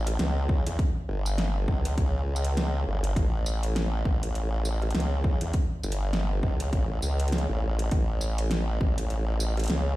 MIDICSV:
0, 0, Header, 1, 3, 480
1, 0, Start_track
1, 0, Tempo, 594059
1, 638, Time_signature, 4, 2, 24, 8
1, 8050, End_track
2, 0, Start_track
2, 0, Title_t, "Wobble bass"
2, 0, Program_c, 0, 39
2, 0, Note_on_c, 0, 33, 101
2, 140, Note_off_c, 0, 33, 0
2, 159, Note_on_c, 0, 37, 95
2, 515, Note_off_c, 0, 37, 0
2, 538, Note_on_c, 0, 40, 102
2, 622, Note_off_c, 0, 40, 0
2, 879, Note_on_c, 0, 31, 97
2, 1342, Note_off_c, 0, 31, 0
2, 1356, Note_on_c, 0, 37, 101
2, 1581, Note_off_c, 0, 37, 0
2, 1598, Note_on_c, 0, 37, 98
2, 2301, Note_off_c, 0, 37, 0
2, 2320, Note_on_c, 0, 31, 98
2, 2542, Note_off_c, 0, 31, 0
2, 2554, Note_on_c, 0, 33, 102
2, 3259, Note_off_c, 0, 33, 0
2, 3276, Note_on_c, 0, 33, 102
2, 3981, Note_off_c, 0, 33, 0
2, 3998, Note_on_c, 0, 37, 95
2, 4354, Note_off_c, 0, 37, 0
2, 4376, Note_on_c, 0, 40, 100
2, 4461, Note_off_c, 0, 40, 0
2, 4713, Note_on_c, 0, 31, 94
2, 5179, Note_off_c, 0, 31, 0
2, 5194, Note_on_c, 0, 37, 98
2, 5420, Note_off_c, 0, 37, 0
2, 5437, Note_on_c, 0, 33, 96
2, 5661, Note_off_c, 0, 33, 0
2, 5676, Note_on_c, 0, 37, 100
2, 6033, Note_off_c, 0, 37, 0
2, 6055, Note_on_c, 0, 33, 94
2, 6381, Note_off_c, 0, 33, 0
2, 6397, Note_on_c, 0, 33, 104
2, 7101, Note_off_c, 0, 33, 0
2, 7117, Note_on_c, 0, 33, 102
2, 7821, Note_off_c, 0, 33, 0
2, 7834, Note_on_c, 0, 37, 91
2, 8050, Note_off_c, 0, 37, 0
2, 8050, End_track
3, 0, Start_track
3, 0, Title_t, "Drums"
3, 55, Note_on_c, 9, 37, 41
3, 55, Note_on_c, 9, 42, 73
3, 136, Note_off_c, 9, 37, 0
3, 136, Note_off_c, 9, 42, 0
3, 156, Note_on_c, 9, 38, 126
3, 156, Note_on_c, 9, 42, 56
3, 236, Note_off_c, 9, 38, 0
3, 236, Note_off_c, 9, 42, 0
3, 397, Note_on_c, 9, 36, 115
3, 477, Note_off_c, 9, 36, 0
3, 538, Note_on_c, 9, 42, 70
3, 618, Note_off_c, 9, 42, 0
3, 637, Note_on_c, 9, 36, 126
3, 639, Note_on_c, 9, 42, 50
3, 718, Note_off_c, 9, 36, 0
3, 720, Note_off_c, 9, 42, 0
3, 1017, Note_on_c, 9, 54, 61
3, 1098, Note_off_c, 9, 54, 0
3, 1116, Note_on_c, 9, 38, 119
3, 1116, Note_on_c, 9, 42, 50
3, 1197, Note_off_c, 9, 38, 0
3, 1197, Note_off_c, 9, 42, 0
3, 1357, Note_on_c, 9, 36, 113
3, 1438, Note_off_c, 9, 36, 0
3, 1496, Note_on_c, 9, 42, 68
3, 1577, Note_off_c, 9, 42, 0
3, 1597, Note_on_c, 9, 36, 110
3, 1597, Note_on_c, 9, 42, 48
3, 1678, Note_off_c, 9, 36, 0
3, 1678, Note_off_c, 9, 42, 0
3, 1906, Note_on_c, 9, 54, 59
3, 1975, Note_on_c, 9, 42, 65
3, 1987, Note_off_c, 9, 54, 0
3, 2056, Note_off_c, 9, 42, 0
3, 2078, Note_on_c, 9, 38, 124
3, 2078, Note_on_c, 9, 42, 52
3, 2159, Note_off_c, 9, 38, 0
3, 2159, Note_off_c, 9, 42, 0
3, 2454, Note_on_c, 9, 42, 68
3, 2535, Note_off_c, 9, 42, 0
3, 2556, Note_on_c, 9, 36, 117
3, 2557, Note_on_c, 9, 42, 52
3, 2636, Note_off_c, 9, 36, 0
3, 2638, Note_off_c, 9, 42, 0
3, 2797, Note_on_c, 9, 54, 65
3, 2877, Note_off_c, 9, 54, 0
3, 2935, Note_on_c, 9, 42, 60
3, 3016, Note_off_c, 9, 42, 0
3, 3038, Note_on_c, 9, 38, 113
3, 3038, Note_on_c, 9, 42, 52
3, 3119, Note_off_c, 9, 38, 0
3, 3119, Note_off_c, 9, 42, 0
3, 3275, Note_on_c, 9, 36, 104
3, 3356, Note_off_c, 9, 36, 0
3, 3418, Note_on_c, 9, 42, 64
3, 3498, Note_off_c, 9, 42, 0
3, 3517, Note_on_c, 9, 42, 48
3, 3598, Note_off_c, 9, 42, 0
3, 3758, Note_on_c, 9, 54, 62
3, 3838, Note_off_c, 9, 54, 0
3, 3896, Note_on_c, 9, 37, 39
3, 3896, Note_on_c, 9, 42, 30
3, 3964, Note_off_c, 9, 42, 0
3, 3964, Note_on_c, 9, 42, 40
3, 3977, Note_off_c, 9, 37, 0
3, 3997, Note_off_c, 9, 42, 0
3, 3997, Note_on_c, 9, 38, 125
3, 3997, Note_on_c, 9, 42, 52
3, 4041, Note_off_c, 9, 42, 0
3, 4041, Note_on_c, 9, 42, 49
3, 4077, Note_off_c, 9, 38, 0
3, 4121, Note_off_c, 9, 42, 0
3, 4235, Note_on_c, 9, 36, 106
3, 4316, Note_off_c, 9, 36, 0
3, 4372, Note_on_c, 9, 42, 67
3, 4452, Note_off_c, 9, 42, 0
3, 4472, Note_on_c, 9, 42, 51
3, 4475, Note_on_c, 9, 36, 110
3, 4553, Note_off_c, 9, 42, 0
3, 4556, Note_off_c, 9, 36, 0
3, 4714, Note_on_c, 9, 54, 65
3, 4782, Note_on_c, 9, 42, 64
3, 4795, Note_off_c, 9, 54, 0
3, 4863, Note_off_c, 9, 42, 0
3, 4955, Note_on_c, 9, 38, 110
3, 4955, Note_on_c, 9, 42, 48
3, 5036, Note_off_c, 9, 38, 0
3, 5036, Note_off_c, 9, 42, 0
3, 5195, Note_on_c, 9, 36, 104
3, 5276, Note_off_c, 9, 36, 0
3, 5333, Note_on_c, 9, 42, 65
3, 5414, Note_off_c, 9, 42, 0
3, 5436, Note_on_c, 9, 36, 101
3, 5436, Note_on_c, 9, 42, 48
3, 5517, Note_off_c, 9, 36, 0
3, 5517, Note_off_c, 9, 42, 0
3, 5675, Note_on_c, 9, 54, 66
3, 5756, Note_off_c, 9, 54, 0
3, 5815, Note_on_c, 9, 42, 62
3, 5881, Note_off_c, 9, 42, 0
3, 5881, Note_on_c, 9, 42, 52
3, 5918, Note_off_c, 9, 42, 0
3, 5918, Note_on_c, 9, 38, 114
3, 5918, Note_on_c, 9, 42, 49
3, 5965, Note_off_c, 9, 42, 0
3, 5965, Note_on_c, 9, 42, 41
3, 5999, Note_off_c, 9, 38, 0
3, 6046, Note_off_c, 9, 42, 0
3, 6295, Note_on_c, 9, 42, 66
3, 6376, Note_off_c, 9, 42, 0
3, 6394, Note_on_c, 9, 42, 50
3, 6396, Note_on_c, 9, 36, 110
3, 6475, Note_off_c, 9, 42, 0
3, 6477, Note_off_c, 9, 36, 0
3, 6633, Note_on_c, 9, 54, 68
3, 6714, Note_off_c, 9, 54, 0
3, 6773, Note_on_c, 9, 42, 64
3, 6854, Note_off_c, 9, 42, 0
3, 6874, Note_on_c, 9, 38, 114
3, 6874, Note_on_c, 9, 42, 53
3, 6955, Note_off_c, 9, 38, 0
3, 6955, Note_off_c, 9, 42, 0
3, 7117, Note_on_c, 9, 36, 101
3, 7197, Note_off_c, 9, 36, 0
3, 7255, Note_on_c, 9, 42, 64
3, 7336, Note_off_c, 9, 42, 0
3, 7355, Note_on_c, 9, 42, 51
3, 7435, Note_off_c, 9, 42, 0
3, 7595, Note_on_c, 9, 54, 67
3, 7676, Note_off_c, 9, 54, 0
3, 7735, Note_on_c, 9, 37, 42
3, 7735, Note_on_c, 9, 42, 30
3, 7753, Note_off_c, 9, 42, 0
3, 7753, Note_on_c, 9, 42, 37
3, 7756, Note_off_c, 9, 42, 0
3, 7756, Note_on_c, 9, 42, 41
3, 7786, Note_off_c, 9, 42, 0
3, 7786, Note_on_c, 9, 42, 46
3, 7803, Note_off_c, 9, 42, 0
3, 7803, Note_on_c, 9, 42, 53
3, 7816, Note_off_c, 9, 37, 0
3, 7819, Note_off_c, 9, 42, 0
3, 7819, Note_on_c, 9, 42, 58
3, 7835, Note_off_c, 9, 42, 0
3, 7835, Note_on_c, 9, 38, 114
3, 7835, Note_on_c, 9, 42, 55
3, 7916, Note_off_c, 9, 38, 0
3, 7916, Note_off_c, 9, 42, 0
3, 8050, End_track
0, 0, End_of_file